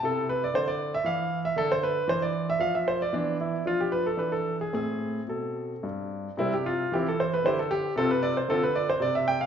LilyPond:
<<
  \new Staff \with { instrumentName = "Grand piano" } { \time 3/4 \key a \minor \tempo 4 = 115 << { a'8 b'16 d''16 c''16 d''8 e''16 f''8. e''16 | a'16 c''16 b'8 c''16 d''8 e''16 f''16 e''16 c''16 d''16 | d'8 e'8 f'16 g'16 b'16 a'16 b'16 a'8 gis'16 | gis'4 a'4 r4 |
\key c \major <g c' e'>16 g'16 f'8 <c' e' g'>16 a'16 c''16 b'16 <e' g' c''>16 a'16 g'8 | <c' f' a'>16 b'16 d''16 c''16 <c' f' a'>16 b'16 d''16 c''16 d''16 e''16 g''16 f''16 | } \\ { e'2. | d'2. | b4 d'4 d'4 | c'2. |
r2. | r2. | } >> }
  \new Staff \with { instrumentName = "Grand piano" } { \clef bass \time 3/4 \key a \minor c4 d4 e4 | d4 e4 f4 | e4 f4 e4 | a,4 b,4 g,4 |
\key c \major c4 e4 d4 | c4 d4 c4 | }
>>